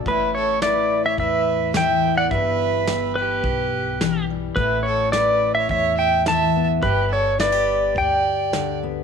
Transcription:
<<
  \new Staff \with { instrumentName = "Pedal steel guitar" } { \time 4/4 \key a \mixolydian \tempo 4 = 106 b'8 cis''8 d''8. e''16 e''4 g''8. fis''16 | e''4. b'2 r8 | b'8 cis''8 d''8. e''16 e''8 g''8 a''8. r16 | b'8 cis''8 d''4 g''4. r8 | }
  \new Staff \with { instrumentName = "Fiddle" } { \time 4/4 \key a \mixolydian e'8 a'8 b'8. cis''16 b'4 e''8. d''16 | b'4. g'2 r8 | e'8 a'8 b'8. cis''16 cis''8 e''8 e''8. r16 | g'8 a'8 b'4 d''4. r8 | }
  \new Staff \with { instrumentName = "Steel-string acoustic guitar" } { \clef bass \time 4/4 \key a \mixolydian << { r4 e'2~ e'8 b8 | r4 g'2~ g'8 g8 | r4 e'2~ e'8 b8 | r4 e'16 g'2~ g'16 b8 | } \\ { a,2. e4 | g,2. e4 | a,2. e4 | g,2. d4 | } >> }
  \new Staff \with { instrumentName = "Upright bass" } { \clef bass \time 4/4 \key a \mixolydian a,,2 e,2 | g,,2 b,,2 | a,,2 e,2 | g,,2 d,2 | }
  \new DrumStaff \with { instrumentName = "Drums" } \drummode { \time 4/4 bd4 sn4 bd4 sn4 | bd4 sn4 bd4 sn4 | bd4 sn4 bd4 sn4 | bd4 sn4 bd4 sn4 | }
>>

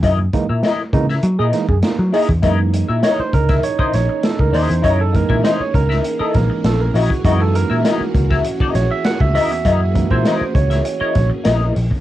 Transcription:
<<
  \new Staff \with { instrumentName = "Clean electric guitar" } { \time 4/4 \key fis \mixolydian \tempo 4 = 100 <e' ais' dis''>16 r8 <e' ais' e''>16 <e' ais' dis''>16 r8 <e' ais' e''>16 r16 <e' ais' dis''>16 r4 <e' ais' dis''>16 r16 | <e' ais' dis''>16 r8 <e' ais' e''>16 <e' ais' dis''>16 r8 <e' ais' e''>16 r16 <e' ais' dis''>16 r4 <e' ais' dis''>16 r16 | <e' ais' dis''>16 r8 <e' ais' e''>16 <e' ais' dis''>16 r8 <e' ais' e''>16 r16 <e' ais' dis''>16 r4 <e' ais' dis''>16 r16 | <e' ais' dis''>16 r8 <e' ais' e''>16 <e' ais' dis''>16 r8 <e' ais' e''>16 r16 <e' ais' dis''>16 r4 <e' ais' dis''>16 r16 |
<e' ais' dis''>16 r8 <e' ais' e''>16 <e' ais' dis''>16 r8 <e' ais' e''>16 r16 <e' ais' dis''>16 r8 <e' ais' dis''>8 r8 | }
  \new Staff \with { instrumentName = "Trombone" } { \time 4/4 \key fis \mixolydian r2 r16 gis'16 r16 gis'16 r8 gis'8 | dis'1~ | dis'2.~ dis'8 r8 | fis'1~ |
fis'2.~ fis'8 r8 | }
  \new Staff \with { instrumentName = "Tine electric piano" } { \time 4/4 \key fis \mixolydian r16 <ais dis'>16 <e gis ais dis'>16 r8. <e gis ais dis'>16 r16 <ais dis'>16 r16 <e gis ais dis'>16 r16 <ais dis'>16 r16 <ais dis'>16 r16 | r4 cis''16 bis'16 ais'8 cis''16 bis'16 cis''8 a'16 ais'16 bis'8 | cis''16 a'16 ais'8 bis'16 cis''16 ais'8. a'16 ais'8 a'16 ais'16 fis'8 | fis'16 a'16 ais'4. r8 cis''16 e''16 fis''16 e''16 e''8~ |
e''8. bis'8. cis''8. cis''8 r4 r16 | }
  \new Staff \with { instrumentName = "Tine electric piano" } { \time 4/4 \key fis \mixolydian r1 | <e gis ais dis'>8 r2. r8 | r8 <e gis ais dis'>8 r4. <e gis ais dis'>8 r4 | <e gis ais dis'>4. r2 r8 |
r8 <e gis ais dis'>8 r2. | }
  \new Staff \with { instrumentName = "String machine" } { \time 4/4 \key fis \mixolydian r1 | <e ais cis' gis'>1~ | <e ais cis' gis'>1~ | <e ais cis' gis'>1~ |
<e ais cis' gis'>1 | }
  \new Staff \with { instrumentName = "Picked electric bass" } { \clef bass \time 4/4 \key fis \mixolydian fis,8 r16 ais,16 r8 cis8 fis16 ais,16 r16 fis,16 r16 fis16 r16 e,16 | fis,8. ais,16 r8 cis,8 r8 ais,,16 r8 cis,16 dis,16 e,16 | fis,8. ais,16 r8 cis,8 r8 ais,,16 r16 ais,,8 ais,,16 r16 | fis,8. ais,16 r8 cis,8 r8 ais,,16 r8 cis,16 dis,16 e,16 |
fis,8. ais,16 r8 cis,8 r8 ais,,16 r16 ais,,8 ais,,16 r16 | }
  \new DrumStaff \with { instrumentName = "Drums" } \drummode { \time 4/4 <hh bd>8 <hh bd>8 <hh sn>8 <hh bd>16 sn16 hh8 <hh sn>16 bd16 <hh sn>8 hho16 <hh bd>16 | <hh bd>8 hh8 <hh sn>8 <hh bd>16 <hh bd sn>16 hh16 bd16 <hh sn>8 <hh sn>16 bd16 hho16 hh16 | <hh bd>8 <hh bd>16 bd16 <hh sn>8 <hh bd>16 sn16 hh8 <hh bd sn>8 <hh sn>8 hho16 <hh bd>16 | <hh bd>8 hh8 <hh sn>8 <hh bd>16 <bd sn>16 hh16 bd16 <hh sn>8 <hh sn>16 bd16 hho16 hh16 |
<hh bd>8 <hh bd>16 bd16 <hh sn>8 <hh bd>16 <hh sn>16 hh8 <hh bd sn>8 <hh sn>8 hho16 <hh bd>16 | }
>>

